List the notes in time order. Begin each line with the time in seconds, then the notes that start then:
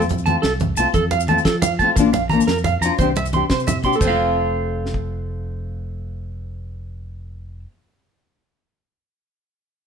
Already playing: F2
0.02 low conga, maracas
0.09 closed hi-hat, low conga
0.18 maracas
0.26 A3 C4 F4 A5, closed hi-hat, high conga
0.42 C2 A4, snare, closed hi-hat
0.53 low conga
0.60 closed hi-hat, high conga, low conga
0.77 C2 A3 C4 F4 A5, closed hi-hat, maracas
0.93 F2 A4, kick, closed hi-hat, high conga, low conga, maracas
1.03 low conga
1.11 F5, closed hi-hat, low conga
1.20 maracas
1.28 A3 C4 F4 A5, closed hi-hat, high conga
1.38 low conga, maracas
1.44 F3 A4, kick, snare, closed hi-hat
1.62 F5, closed hi-hat, high conga, low conga, maracas
1.79 A3 C4 A5, kick, closed hi-hat, maracas
1.84 F4
1.96 A#1 F3 A#3 D4, muted clean electric guitar stroke, kick, closed hi-hat, high conga, maracas
2.00 F4
2.13 F5, closed hi-hat, low conga
2.29 F3 A#3 A#5, closed hi-hat, high conga
2.34 D4 F4
2.41 maracas
2.47 F2 A#4, snare, closed hi-hat, low conga
2.58 maracas
2.64 F5, closed hi-hat, high conga, low conga
2.81 F2 F3 D4 A#5, closed hi-hat, maracas
2.85 F4
2.98 C2 E3 C4 D4 G4 C5, kick, closed hi-hat, high conga, maracas
3.16 E5, closed hi-hat, low conga
3.25 low conga, maracas
3.33 C4 D4 G4 C6, muted nylon-string guitar stroke, closed hi-hat, high conga
3.50 C3 C5, kick, snare, closed hi-hat, maracas
3.60 maracas
3.67 E5, closed hi-hat, high conga, low conga, maracas
3.82 C4 D4 G4 C6, muted nylon-string guitar stroke, kick, closed hi-hat
3.93 A4, low conga, maracas
3.98 F1 A3 C5, kick, crash, high conga
4.02 C4, maracas
4.07 F4 F5
4.86 snare
4.94 kick